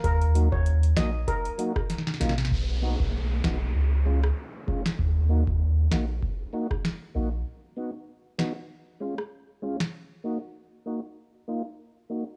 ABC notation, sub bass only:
X:1
M:4/4
L:1/16
Q:"Swing 16ths" 1/4=97
K:Ebm
V:1 name="Sub bass" clef=bass
E,,3 E,,3 B,,,2 z6 B,,,2 | =B,,,3 B,,,3 B,,,2 D,,4 z4 | E,,3 E,,3 B,,,2 z6 B,,,2 | z16 |
z16 |]